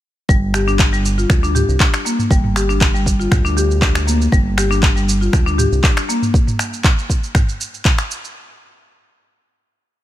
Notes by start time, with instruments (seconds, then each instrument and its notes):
0.29 analog synth bass G1, marimba G3, kick, shaker
0.54 marimba G4, finger snap, shaker
0.68 marimba D4, shaker
0.79 kick, clap, shaker
0.93 marimba G3, shaker
1.05 shaker
1.18 marimba F4, shaker
1.30 analog synth bass D2, finger snap, kick, shaker
1.43 marimba D4, shaker
1.55 marimba G4, mid tom, shaker
1.68 analog synth bass C2, shaker
1.80 marimba D4, kick, clap, shaker
1.94 finger snap, shaker
2.05 marimba A#3, shaker
2.19 mid tom, shaker
2.31 analog synth bass G1, marimba G3, kick, shaker
2.44 mid tom
2.56 marimba G4, finger snap, shaker
2.69 marimba D4, shaker
2.81 kick, clap, shaker
2.94 marimba G3, shaker
3.06 kick, shaker
3.20 marimba F4, shaker
3.31 analog synth bass D2, finger snap, kick, mid tom, shaker
3.45 marimba D4, shaker
3.57 marimba G4, shaker
3.71 shaker
3.82 marimba D4, kick, clap, shaker
3.95 finger snap, shaker
4.07 marimba A#3, shaker
4.21 shaker
4.32 analog synth bass G1, marimba G3, kick, shaker
4.58 marimba G4, finger snap, shaker
4.71 marimba D4, shaker
4.83 kick, clap, shaker
4.96 marimba G3, shaker
5.09 shaker
5.21 marimba F4, shaker
5.33 analog synth bass D2, finger snap, kick, shaker
5.46 marimba D4, shaker
5.58 marimba G4, mid tom, shaker
5.72 analog synth bass C2, shaker
5.83 marimba D4, kick, clap, shaker
5.97 finger snap, shaker
6.09 marimba A#3, shaker
6.22 mid tom, shaker
6.34 kick, shaker
6.47 mid tom, shaker
6.59 finger snap, shaker
6.73 shaker
6.84 kick, clap, shaker
6.98 shaker
7.10 kick, shaker
7.24 shaker
7.35 finger snap, kick, mid tom, shaker
7.49 shaker
7.61 shaker
7.74 shaker
7.85 kick, clap, shaker
7.98 finger snap, shaker
8.11 shaker
8.24 shaker